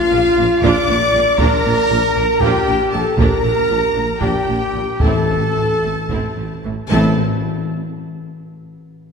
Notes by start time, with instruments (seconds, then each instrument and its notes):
Already playing: french horn section F4, trumpet F4, violin section F5
0.11 double bass section A#1, tuba A#1, cello section A#2, viola section F3 A#3
0.37 double bass section A#1, tuba A#1, cello section A#2, viola section A#3 D4
0.62 double bass section A#1, tuba A#1, cello section A#2, viola section D4 F4, french horn section D5, trumpet D5, violin section D6, taiko
0.87 double bass section A#1, tuba A#1, cello section A#2, viola section A#3 D4
1.13 double bass section A#1, tuba A#1, cello section A#2, viola section F3 A#3
1.38 double bass section A#1, tuba A#1, cello section A#2, viola section D4 F4, trumpet A#4, french horn section A#4, violin section A#5, taiko
1.64 double bass section A#1, tuba A#1, cello section A#2, viola section A#3 D4
1.90 double bass section A#1, tuba A#1, cello section A#2, viola section F3 A#3
2.15 double bass section A#1, tuba A#1, cello section A#2, viola section A#3 D4
2.40 double bass section A#1, tuba A#1, cello section A#2, viola section D4 F4, french horn section G4, trumpet G4, violin section G5, taiko
2.67 double bass section A#1, tuba A#1, cello section A#2, viola section A#3 D4
2.92 double bass section A#1, tuba A#1, cello section A#2, viola section F3 A#3, trumpet A4, french horn section A4, violin section A5
3.17 double bass section A#1, tuba A#1, cello section A#2, viola section D4 G4, trumpet A#4, french horn section A#4, violin section A#5, taiko
3.43 tuba A#1, double bass section A#1, cello section A#2, viola section A#3 D4
3.69 double bass section A#1, tuba A#1, cello section A#2, viola section G3 A#3
3.93 double bass section A#1, tuba A#1, cello section A#2, viola section A#3 D4
4.21 double bass section A#1, tuba A#1, cello section A#2, viola section D4 G4, french horn section G4, trumpet G4, violin section G5, taiko
4.47 double bass section A#1, tuba A#1, cello section A#2, viola section A#3 D4
4.74 double bass section A#1, tuba A#1, cello section A#2, viola section G3 A#3
5.00 tuba A1, double bass section A1, timpani A2, cello section A2, viola section C4 E4, french horn section A4, trumpet A4, violin section A5, taiko
5.28 double bass section A1, tuba A1, cello section A2, viola section A3 C4
5.55 double bass section A1, tuba A1, cello section A2, viola section E3 A3
5.82 double bass section A1, tuba A1, cello section A2, viola section A3 C4
6.09 double bass section A1, tuba A1, cello section A2, viola section C4 E4, taiko
6.36 tuba A1, double bass section A1, cello section A2, viola section A3 C4
6.64 double bass section A1, tuba A1, cello section A2, viola section E3 A3
6.90 double bass section A1, tuba A1, timpani A2, cello section A2, viola section C4 E4, french horn section A4, trumpet A4, violin section A5